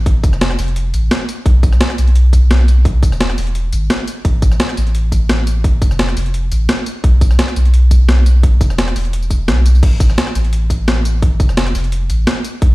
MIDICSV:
0, 0, Header, 1, 3, 480
1, 0, Start_track
1, 0, Tempo, 348837
1, 87, Time_signature, 4, 2, 24, 8
1, 17543, End_track
2, 0, Start_track
2, 0, Title_t, "Sub bass"
2, 0, Program_c, 0, 38
2, 0, Note_on_c, 0, 33, 79
2, 326, Note_on_c, 0, 29, 78
2, 347, Note_off_c, 0, 33, 0
2, 788, Note_off_c, 0, 29, 0
2, 811, Note_on_c, 0, 29, 83
2, 1281, Note_off_c, 0, 29, 0
2, 1290, Note_on_c, 0, 33, 90
2, 1505, Note_off_c, 0, 33, 0
2, 2004, Note_on_c, 0, 35, 100
2, 2467, Note_off_c, 0, 35, 0
2, 2731, Note_on_c, 0, 35, 82
2, 4165, Note_on_c, 0, 28, 80
2, 4186, Note_off_c, 0, 35, 0
2, 4628, Note_off_c, 0, 28, 0
2, 4650, Note_on_c, 0, 28, 81
2, 5125, Note_off_c, 0, 28, 0
2, 5133, Note_on_c, 0, 32, 89
2, 5347, Note_off_c, 0, 32, 0
2, 5847, Note_on_c, 0, 33, 102
2, 6308, Note_off_c, 0, 33, 0
2, 6570, Note_on_c, 0, 33, 83
2, 8006, Note_on_c, 0, 29, 85
2, 8027, Note_off_c, 0, 33, 0
2, 8468, Note_off_c, 0, 29, 0
2, 8487, Note_on_c, 0, 29, 82
2, 8959, Note_off_c, 0, 29, 0
2, 8968, Note_on_c, 0, 33, 89
2, 9184, Note_off_c, 0, 33, 0
2, 9685, Note_on_c, 0, 35, 98
2, 10147, Note_off_c, 0, 35, 0
2, 10408, Note_on_c, 0, 35, 81
2, 11845, Note_on_c, 0, 28, 83
2, 11865, Note_off_c, 0, 35, 0
2, 12308, Note_off_c, 0, 28, 0
2, 12326, Note_on_c, 0, 28, 82
2, 13047, Note_on_c, 0, 35, 99
2, 13068, Note_off_c, 0, 28, 0
2, 13509, Note_off_c, 0, 35, 0
2, 13525, Note_on_c, 0, 33, 97
2, 13988, Note_off_c, 0, 33, 0
2, 14245, Note_on_c, 0, 33, 81
2, 15687, Note_on_c, 0, 29, 87
2, 15707, Note_off_c, 0, 33, 0
2, 16148, Note_off_c, 0, 29, 0
2, 16169, Note_on_c, 0, 29, 80
2, 16638, Note_off_c, 0, 29, 0
2, 16646, Note_on_c, 0, 33, 92
2, 16864, Note_off_c, 0, 33, 0
2, 17365, Note_on_c, 0, 35, 95
2, 17543, Note_off_c, 0, 35, 0
2, 17543, End_track
3, 0, Start_track
3, 0, Title_t, "Drums"
3, 85, Note_on_c, 9, 36, 118
3, 88, Note_on_c, 9, 42, 87
3, 222, Note_off_c, 9, 36, 0
3, 226, Note_off_c, 9, 42, 0
3, 324, Note_on_c, 9, 36, 112
3, 327, Note_on_c, 9, 42, 67
3, 327, Note_on_c, 9, 54, 56
3, 454, Note_off_c, 9, 54, 0
3, 454, Note_on_c, 9, 37, 36
3, 454, Note_on_c, 9, 54, 26
3, 462, Note_off_c, 9, 36, 0
3, 464, Note_off_c, 9, 42, 0
3, 569, Note_on_c, 9, 38, 126
3, 569, Note_on_c, 9, 42, 92
3, 592, Note_off_c, 9, 37, 0
3, 592, Note_off_c, 9, 54, 0
3, 696, Note_off_c, 9, 42, 0
3, 696, Note_on_c, 9, 37, 39
3, 696, Note_on_c, 9, 42, 37
3, 707, Note_off_c, 9, 38, 0
3, 806, Note_on_c, 9, 46, 79
3, 806, Note_on_c, 9, 54, 57
3, 834, Note_off_c, 9, 37, 0
3, 834, Note_off_c, 9, 42, 0
3, 935, Note_on_c, 9, 42, 36
3, 944, Note_off_c, 9, 46, 0
3, 944, Note_off_c, 9, 54, 0
3, 1047, Note_off_c, 9, 42, 0
3, 1047, Note_on_c, 9, 42, 94
3, 1185, Note_off_c, 9, 42, 0
3, 1289, Note_on_c, 9, 42, 65
3, 1289, Note_on_c, 9, 54, 58
3, 1427, Note_off_c, 9, 42, 0
3, 1427, Note_off_c, 9, 54, 0
3, 1530, Note_on_c, 9, 38, 127
3, 1530, Note_on_c, 9, 42, 94
3, 1668, Note_off_c, 9, 38, 0
3, 1668, Note_off_c, 9, 42, 0
3, 1770, Note_on_c, 9, 42, 67
3, 1770, Note_on_c, 9, 54, 55
3, 1908, Note_off_c, 9, 42, 0
3, 1908, Note_off_c, 9, 54, 0
3, 2005, Note_on_c, 9, 36, 127
3, 2008, Note_on_c, 9, 42, 93
3, 2142, Note_off_c, 9, 36, 0
3, 2145, Note_off_c, 9, 42, 0
3, 2245, Note_on_c, 9, 36, 115
3, 2248, Note_on_c, 9, 42, 65
3, 2248, Note_on_c, 9, 54, 53
3, 2374, Note_off_c, 9, 54, 0
3, 2374, Note_on_c, 9, 37, 36
3, 2374, Note_on_c, 9, 54, 26
3, 2382, Note_off_c, 9, 36, 0
3, 2385, Note_off_c, 9, 42, 0
3, 2485, Note_on_c, 9, 38, 127
3, 2485, Note_on_c, 9, 42, 95
3, 2511, Note_off_c, 9, 37, 0
3, 2511, Note_off_c, 9, 54, 0
3, 2615, Note_off_c, 9, 42, 0
3, 2615, Note_on_c, 9, 37, 35
3, 2615, Note_on_c, 9, 42, 37
3, 2623, Note_off_c, 9, 38, 0
3, 2728, Note_off_c, 9, 42, 0
3, 2728, Note_on_c, 9, 42, 69
3, 2728, Note_on_c, 9, 54, 59
3, 2752, Note_off_c, 9, 37, 0
3, 2854, Note_off_c, 9, 42, 0
3, 2854, Note_on_c, 9, 42, 35
3, 2866, Note_off_c, 9, 54, 0
3, 2966, Note_off_c, 9, 42, 0
3, 2966, Note_on_c, 9, 42, 92
3, 3103, Note_off_c, 9, 42, 0
3, 3204, Note_on_c, 9, 36, 65
3, 3208, Note_on_c, 9, 42, 65
3, 3208, Note_on_c, 9, 54, 56
3, 3342, Note_off_c, 9, 36, 0
3, 3346, Note_off_c, 9, 42, 0
3, 3346, Note_off_c, 9, 54, 0
3, 3449, Note_on_c, 9, 38, 124
3, 3449, Note_on_c, 9, 42, 87
3, 3587, Note_off_c, 9, 38, 0
3, 3587, Note_off_c, 9, 42, 0
3, 3690, Note_on_c, 9, 42, 63
3, 3690, Note_on_c, 9, 54, 56
3, 3827, Note_off_c, 9, 42, 0
3, 3827, Note_off_c, 9, 54, 0
3, 3924, Note_on_c, 9, 36, 120
3, 3930, Note_on_c, 9, 42, 88
3, 4062, Note_off_c, 9, 36, 0
3, 4068, Note_off_c, 9, 42, 0
3, 4165, Note_on_c, 9, 36, 113
3, 4171, Note_on_c, 9, 42, 62
3, 4171, Note_on_c, 9, 54, 56
3, 4297, Note_off_c, 9, 54, 0
3, 4297, Note_on_c, 9, 37, 33
3, 4297, Note_on_c, 9, 54, 26
3, 4302, Note_off_c, 9, 36, 0
3, 4309, Note_off_c, 9, 42, 0
3, 4411, Note_on_c, 9, 38, 122
3, 4411, Note_on_c, 9, 42, 87
3, 4435, Note_off_c, 9, 37, 0
3, 4435, Note_off_c, 9, 54, 0
3, 4536, Note_off_c, 9, 42, 0
3, 4536, Note_on_c, 9, 37, 35
3, 4536, Note_on_c, 9, 42, 34
3, 4548, Note_off_c, 9, 38, 0
3, 4649, Note_on_c, 9, 46, 84
3, 4649, Note_on_c, 9, 54, 58
3, 4674, Note_off_c, 9, 37, 0
3, 4674, Note_off_c, 9, 42, 0
3, 4774, Note_on_c, 9, 42, 35
3, 4786, Note_off_c, 9, 46, 0
3, 4786, Note_off_c, 9, 54, 0
3, 4885, Note_off_c, 9, 42, 0
3, 4885, Note_on_c, 9, 42, 86
3, 5023, Note_off_c, 9, 42, 0
3, 5126, Note_on_c, 9, 42, 62
3, 5126, Note_on_c, 9, 54, 57
3, 5263, Note_off_c, 9, 42, 0
3, 5263, Note_off_c, 9, 54, 0
3, 5367, Note_on_c, 9, 38, 120
3, 5367, Note_on_c, 9, 42, 93
3, 5505, Note_off_c, 9, 38, 0
3, 5505, Note_off_c, 9, 42, 0
3, 5607, Note_on_c, 9, 42, 66
3, 5607, Note_on_c, 9, 54, 56
3, 5745, Note_off_c, 9, 42, 0
3, 5745, Note_off_c, 9, 54, 0
3, 5846, Note_on_c, 9, 36, 117
3, 5847, Note_on_c, 9, 42, 87
3, 5983, Note_off_c, 9, 36, 0
3, 5985, Note_off_c, 9, 42, 0
3, 6086, Note_on_c, 9, 36, 104
3, 6086, Note_on_c, 9, 42, 63
3, 6086, Note_on_c, 9, 54, 57
3, 6214, Note_off_c, 9, 54, 0
3, 6214, Note_on_c, 9, 37, 33
3, 6214, Note_on_c, 9, 54, 28
3, 6223, Note_off_c, 9, 36, 0
3, 6223, Note_off_c, 9, 42, 0
3, 6327, Note_on_c, 9, 38, 118
3, 6327, Note_on_c, 9, 42, 92
3, 6351, Note_off_c, 9, 37, 0
3, 6351, Note_off_c, 9, 54, 0
3, 6455, Note_off_c, 9, 42, 0
3, 6455, Note_on_c, 9, 37, 35
3, 6455, Note_on_c, 9, 42, 36
3, 6465, Note_off_c, 9, 38, 0
3, 6568, Note_off_c, 9, 42, 0
3, 6568, Note_on_c, 9, 42, 64
3, 6568, Note_on_c, 9, 54, 58
3, 6593, Note_off_c, 9, 37, 0
3, 6696, Note_off_c, 9, 42, 0
3, 6696, Note_on_c, 9, 42, 36
3, 6705, Note_off_c, 9, 54, 0
3, 6807, Note_off_c, 9, 42, 0
3, 6807, Note_on_c, 9, 42, 92
3, 6944, Note_off_c, 9, 42, 0
3, 7045, Note_on_c, 9, 36, 60
3, 7048, Note_on_c, 9, 42, 62
3, 7048, Note_on_c, 9, 54, 60
3, 7183, Note_off_c, 9, 36, 0
3, 7185, Note_off_c, 9, 42, 0
3, 7185, Note_off_c, 9, 54, 0
3, 7286, Note_on_c, 9, 38, 120
3, 7286, Note_on_c, 9, 42, 95
3, 7423, Note_off_c, 9, 38, 0
3, 7423, Note_off_c, 9, 42, 0
3, 7526, Note_on_c, 9, 42, 64
3, 7526, Note_on_c, 9, 54, 61
3, 7663, Note_off_c, 9, 42, 0
3, 7663, Note_off_c, 9, 54, 0
3, 7764, Note_on_c, 9, 36, 114
3, 7767, Note_on_c, 9, 42, 91
3, 7902, Note_off_c, 9, 36, 0
3, 7904, Note_off_c, 9, 42, 0
3, 8004, Note_on_c, 9, 36, 106
3, 8006, Note_on_c, 9, 42, 64
3, 8006, Note_on_c, 9, 54, 64
3, 8133, Note_off_c, 9, 54, 0
3, 8133, Note_on_c, 9, 37, 32
3, 8133, Note_on_c, 9, 54, 28
3, 8142, Note_off_c, 9, 36, 0
3, 8144, Note_off_c, 9, 42, 0
3, 8246, Note_on_c, 9, 38, 115
3, 8246, Note_on_c, 9, 42, 93
3, 8271, Note_off_c, 9, 37, 0
3, 8271, Note_off_c, 9, 54, 0
3, 8374, Note_off_c, 9, 42, 0
3, 8374, Note_on_c, 9, 37, 35
3, 8374, Note_on_c, 9, 42, 37
3, 8383, Note_off_c, 9, 38, 0
3, 8486, Note_on_c, 9, 46, 78
3, 8486, Note_on_c, 9, 54, 62
3, 8512, Note_off_c, 9, 37, 0
3, 8512, Note_off_c, 9, 42, 0
3, 8613, Note_on_c, 9, 42, 36
3, 8624, Note_off_c, 9, 46, 0
3, 8624, Note_off_c, 9, 54, 0
3, 8725, Note_off_c, 9, 42, 0
3, 8725, Note_on_c, 9, 42, 90
3, 8862, Note_off_c, 9, 42, 0
3, 8965, Note_on_c, 9, 42, 65
3, 8965, Note_on_c, 9, 54, 60
3, 9103, Note_off_c, 9, 42, 0
3, 9103, Note_off_c, 9, 54, 0
3, 9204, Note_on_c, 9, 38, 120
3, 9204, Note_on_c, 9, 42, 95
3, 9342, Note_off_c, 9, 38, 0
3, 9342, Note_off_c, 9, 42, 0
3, 9443, Note_on_c, 9, 42, 66
3, 9443, Note_on_c, 9, 54, 63
3, 9581, Note_off_c, 9, 42, 0
3, 9581, Note_off_c, 9, 54, 0
3, 9685, Note_on_c, 9, 36, 119
3, 9685, Note_on_c, 9, 42, 96
3, 9823, Note_off_c, 9, 36, 0
3, 9823, Note_off_c, 9, 42, 0
3, 9925, Note_on_c, 9, 36, 100
3, 9926, Note_on_c, 9, 42, 69
3, 9926, Note_on_c, 9, 54, 61
3, 10054, Note_off_c, 9, 54, 0
3, 10054, Note_on_c, 9, 37, 33
3, 10054, Note_on_c, 9, 54, 28
3, 10063, Note_off_c, 9, 36, 0
3, 10064, Note_off_c, 9, 42, 0
3, 10167, Note_on_c, 9, 38, 120
3, 10167, Note_on_c, 9, 42, 99
3, 10192, Note_off_c, 9, 37, 0
3, 10192, Note_off_c, 9, 54, 0
3, 10294, Note_off_c, 9, 42, 0
3, 10294, Note_on_c, 9, 37, 35
3, 10294, Note_on_c, 9, 42, 38
3, 10305, Note_off_c, 9, 38, 0
3, 10407, Note_off_c, 9, 42, 0
3, 10407, Note_on_c, 9, 42, 68
3, 10407, Note_on_c, 9, 54, 62
3, 10431, Note_off_c, 9, 37, 0
3, 10532, Note_off_c, 9, 42, 0
3, 10532, Note_on_c, 9, 42, 37
3, 10544, Note_off_c, 9, 54, 0
3, 10645, Note_off_c, 9, 42, 0
3, 10645, Note_on_c, 9, 42, 92
3, 10783, Note_off_c, 9, 42, 0
3, 10885, Note_on_c, 9, 36, 59
3, 10885, Note_on_c, 9, 42, 67
3, 10885, Note_on_c, 9, 54, 65
3, 11022, Note_off_c, 9, 42, 0
3, 11022, Note_off_c, 9, 54, 0
3, 11023, Note_off_c, 9, 36, 0
3, 11126, Note_on_c, 9, 38, 114
3, 11126, Note_on_c, 9, 42, 96
3, 11264, Note_off_c, 9, 38, 0
3, 11264, Note_off_c, 9, 42, 0
3, 11367, Note_on_c, 9, 42, 70
3, 11367, Note_on_c, 9, 54, 64
3, 11505, Note_off_c, 9, 42, 0
3, 11505, Note_off_c, 9, 54, 0
3, 11605, Note_on_c, 9, 36, 114
3, 11607, Note_on_c, 9, 42, 101
3, 11743, Note_off_c, 9, 36, 0
3, 11744, Note_off_c, 9, 42, 0
3, 11845, Note_on_c, 9, 36, 102
3, 11848, Note_on_c, 9, 42, 70
3, 11848, Note_on_c, 9, 54, 59
3, 11975, Note_off_c, 9, 54, 0
3, 11975, Note_on_c, 9, 37, 34
3, 11975, Note_on_c, 9, 54, 29
3, 11982, Note_off_c, 9, 36, 0
3, 11986, Note_off_c, 9, 42, 0
3, 12088, Note_on_c, 9, 38, 113
3, 12088, Note_on_c, 9, 42, 102
3, 12112, Note_off_c, 9, 37, 0
3, 12112, Note_off_c, 9, 54, 0
3, 12215, Note_off_c, 9, 42, 0
3, 12215, Note_on_c, 9, 37, 36
3, 12215, Note_on_c, 9, 42, 40
3, 12225, Note_off_c, 9, 38, 0
3, 12327, Note_on_c, 9, 46, 78
3, 12327, Note_on_c, 9, 54, 62
3, 12352, Note_off_c, 9, 37, 0
3, 12352, Note_off_c, 9, 42, 0
3, 12453, Note_on_c, 9, 42, 39
3, 12465, Note_off_c, 9, 46, 0
3, 12465, Note_off_c, 9, 54, 0
3, 12567, Note_off_c, 9, 42, 0
3, 12567, Note_on_c, 9, 42, 98
3, 12693, Note_on_c, 9, 54, 30
3, 12704, Note_off_c, 9, 42, 0
3, 12804, Note_on_c, 9, 36, 56
3, 12805, Note_off_c, 9, 54, 0
3, 12805, Note_on_c, 9, 42, 67
3, 12805, Note_on_c, 9, 54, 60
3, 12942, Note_off_c, 9, 36, 0
3, 12942, Note_off_c, 9, 42, 0
3, 12942, Note_off_c, 9, 54, 0
3, 13047, Note_on_c, 9, 38, 112
3, 13047, Note_on_c, 9, 42, 104
3, 13184, Note_off_c, 9, 38, 0
3, 13184, Note_off_c, 9, 42, 0
3, 13287, Note_on_c, 9, 42, 67
3, 13287, Note_on_c, 9, 54, 61
3, 13414, Note_off_c, 9, 54, 0
3, 13414, Note_on_c, 9, 54, 27
3, 13425, Note_off_c, 9, 42, 0
3, 13523, Note_on_c, 9, 36, 121
3, 13527, Note_on_c, 9, 42, 94
3, 13527, Note_on_c, 9, 49, 74
3, 13552, Note_off_c, 9, 54, 0
3, 13661, Note_off_c, 9, 36, 0
3, 13664, Note_off_c, 9, 42, 0
3, 13664, Note_off_c, 9, 49, 0
3, 13763, Note_on_c, 9, 36, 107
3, 13766, Note_on_c, 9, 42, 68
3, 13766, Note_on_c, 9, 54, 58
3, 13893, Note_off_c, 9, 54, 0
3, 13893, Note_on_c, 9, 37, 36
3, 13893, Note_on_c, 9, 54, 26
3, 13900, Note_off_c, 9, 36, 0
3, 13904, Note_off_c, 9, 42, 0
3, 14006, Note_on_c, 9, 38, 117
3, 14006, Note_on_c, 9, 42, 102
3, 14031, Note_off_c, 9, 37, 0
3, 14031, Note_off_c, 9, 54, 0
3, 14132, Note_off_c, 9, 42, 0
3, 14132, Note_on_c, 9, 37, 39
3, 14132, Note_on_c, 9, 42, 37
3, 14144, Note_off_c, 9, 38, 0
3, 14246, Note_off_c, 9, 42, 0
3, 14246, Note_on_c, 9, 42, 69
3, 14246, Note_on_c, 9, 54, 60
3, 14269, Note_off_c, 9, 37, 0
3, 14372, Note_off_c, 9, 42, 0
3, 14372, Note_on_c, 9, 42, 38
3, 14383, Note_off_c, 9, 54, 0
3, 14486, Note_off_c, 9, 42, 0
3, 14486, Note_on_c, 9, 42, 99
3, 14623, Note_off_c, 9, 42, 0
3, 14724, Note_on_c, 9, 36, 64
3, 14727, Note_on_c, 9, 42, 70
3, 14727, Note_on_c, 9, 54, 59
3, 14861, Note_off_c, 9, 36, 0
3, 14865, Note_off_c, 9, 42, 0
3, 14865, Note_off_c, 9, 54, 0
3, 14969, Note_on_c, 9, 38, 122
3, 14969, Note_on_c, 9, 42, 95
3, 15106, Note_off_c, 9, 38, 0
3, 15106, Note_off_c, 9, 42, 0
3, 15208, Note_on_c, 9, 42, 69
3, 15208, Note_on_c, 9, 54, 60
3, 15345, Note_off_c, 9, 42, 0
3, 15345, Note_off_c, 9, 54, 0
3, 15445, Note_on_c, 9, 36, 126
3, 15447, Note_on_c, 9, 42, 93
3, 15582, Note_off_c, 9, 36, 0
3, 15585, Note_off_c, 9, 42, 0
3, 15684, Note_on_c, 9, 36, 115
3, 15686, Note_on_c, 9, 42, 63
3, 15686, Note_on_c, 9, 54, 59
3, 15811, Note_off_c, 9, 54, 0
3, 15811, Note_on_c, 9, 37, 36
3, 15811, Note_on_c, 9, 54, 26
3, 15822, Note_off_c, 9, 36, 0
3, 15824, Note_off_c, 9, 42, 0
3, 15924, Note_on_c, 9, 38, 127
3, 15924, Note_on_c, 9, 42, 98
3, 15949, Note_off_c, 9, 37, 0
3, 15949, Note_off_c, 9, 54, 0
3, 16053, Note_off_c, 9, 42, 0
3, 16053, Note_on_c, 9, 37, 39
3, 16053, Note_on_c, 9, 42, 36
3, 16062, Note_off_c, 9, 38, 0
3, 16167, Note_on_c, 9, 46, 78
3, 16167, Note_on_c, 9, 54, 59
3, 16190, Note_off_c, 9, 37, 0
3, 16190, Note_off_c, 9, 42, 0
3, 16292, Note_on_c, 9, 42, 39
3, 16304, Note_off_c, 9, 46, 0
3, 16304, Note_off_c, 9, 54, 0
3, 16404, Note_off_c, 9, 42, 0
3, 16404, Note_on_c, 9, 42, 93
3, 16542, Note_off_c, 9, 42, 0
3, 16644, Note_on_c, 9, 42, 69
3, 16644, Note_on_c, 9, 54, 60
3, 16782, Note_off_c, 9, 42, 0
3, 16782, Note_off_c, 9, 54, 0
3, 16885, Note_on_c, 9, 38, 122
3, 16885, Note_on_c, 9, 42, 91
3, 17023, Note_off_c, 9, 38, 0
3, 17023, Note_off_c, 9, 42, 0
3, 17124, Note_on_c, 9, 42, 69
3, 17124, Note_on_c, 9, 54, 60
3, 17262, Note_off_c, 9, 42, 0
3, 17262, Note_off_c, 9, 54, 0
3, 17364, Note_on_c, 9, 36, 123
3, 17364, Note_on_c, 9, 42, 90
3, 17501, Note_off_c, 9, 36, 0
3, 17502, Note_off_c, 9, 42, 0
3, 17543, End_track
0, 0, End_of_file